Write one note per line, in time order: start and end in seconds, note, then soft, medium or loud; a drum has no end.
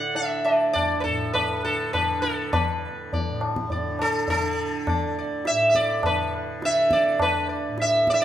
0.00 0.49 D2 medium
0.00 1.07 A2 medium
0.00 1.63 D3 medium
0.00 0.16 F#5 medium
0.15 0.46 E5 medium
0.15 tabla tin medium
0.45 0.72 D5 medium
0.45 tabla na medium
0.50 2.74 D2 medium
0.73 0.99 D5 medium
0.73 tabla na medium
0.73 tabla ge medium
1.00 1.33 A4 medium
1.00 1.03 B4 medium
1.05 3.27 A2 medium
1.05 tabla ge soft
1.34 1.64 B4 medium
1.34 tabla na medium
1.34 tabla ge medium
1.63 2.18 D3 medium
1.63 1.93 A4 medium
1.63 tabla te soft
1.93 2.22 B4 medium
1.93 tabla na medium
1.93 tabla ge medium
2.18 3.85 D3 medium
2.18 2.52 A4 medium
2.24 tabla te medium
2.53 3.38 B4 medium
2.53 tabla na medium
2.53 tabla ge medium
2.74 4.94 D2 medium
3.13 3.41 D5 soft
3.13 tabla tin medium
3.13 tabla ge medium
3.28 5.50 A2 medium
3.41 tabla na medium
3.56 tabla ke medium
3.70 3.99 D5 soft
3.70 tabla tin medium
3.70 tabla ge medium
3.85 4.39 D3 medium
3.99 4.29 A4 medium
3.99 tabla na medium
4.28 5.14 A4 medium
4.28 tabla tin medium
4.28 tabla ge medium
4.39 6.06 D3 medium
4.87 5.16 D5 soft
4.87 tabla na medium
4.87 tabla ge medium
4.94 7.13 D2 medium
5.19 5.46 D5 soft
5.45 5.68 E5 medium
5.45 tabla te medium
5.50 7.68 A2 medium
5.70 5.76 E5 medium
5.75 6.05 D5 medium
5.75 tabla ke medium
6.03 6.60 D3 medium
6.03 6.33 B4 medium
6.03 tabla na medium
6.03 tabla ge medium
6.60 8.21 D3 medium
6.60 tabla te medium
6.65 6.94 E5 loud
6.91 7.21 D5 medium
6.91 tabla ke medium
7.14 8.25 D2 medium
7.20 7.49 B4 medium
7.20 tabla na medium
7.20 tabla ge medium
7.49 7.77 D5 soft
7.68 8.25 A2 medium
7.78 8.10 E5 medium
7.78 tabla te medium
8.07 8.13 D5 medium
8.07 tabla ke medium
8.14 8.20 E5 medium
8.21 8.25 D3 soft